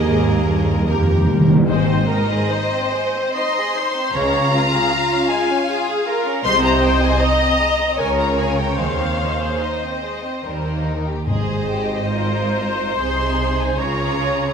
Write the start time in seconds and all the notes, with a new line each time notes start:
Already playing: D#2 D#3 A#3 G#4 A#4 D#5
0.07 G#2
0.48 G2
0.87 F2 D#3 A#3 G4 A#4
1.03 D#3
1.11 D#3
1.18 D#3
1.26 D#2 D#3
1.33 D#3
1.41 D#3
1.48 D#3
1.56 D#3
1.68 G#1 G#2 G#3 C5 D#5
1.87 C4
2.08 D#4 A#4
2.30 G#4
2.50 D#4 C5
2.72 C4
2.93 G#3
3.15 C4
3.35 D#4 D#5 C6
3.59 G#4
3.77 D#4 C5
3.98 C4
4.14 C#2 C#3 G#3 C#5 F5 A#5
4.35 C#4
4.53 F4
4.73 G#4
4.92 F4
5.12 C#4
5.30 G#3 G#5
5.50 C#4
5.69 F4 G#4
5.88 G#4
6.07 F4 A#4
6.26 C#4
6.44 C2 C3 G#3 C5 D#5 C6
6.64 C4 A#5
6.82 D#4 G5
7.02 G#4 G#5
7.20 D#4 D#5 A#5
7.40 C4
7.60 G#3
7.81 C4
7.97 C#2 C#3 C#4 A#4 C#5 G#5
8.18 F4 A#5
8.36 G#4 G#5
8.57 A#4 G5
8.77 D#2 D#3 G#3 C5 F5
8.98 C4
9.18 D#4
9.41 G#4
9.61 D#4 C5 D#5
9.82 C4
10.03 G#3
10.23 C4
10.44 D#2 D#3 G3 A#4
10.64 A#3
10.86 D#4
11.07 G4
11.27 G#1 G#2 G#4 C5 D#5
11.70 G4
12.11 F4 A#4 C5
12.98 C2 C3 D#4 G#4 C6
13.60 G#5
13.78 C#2 C#3 F4 G#4 C#5 A#5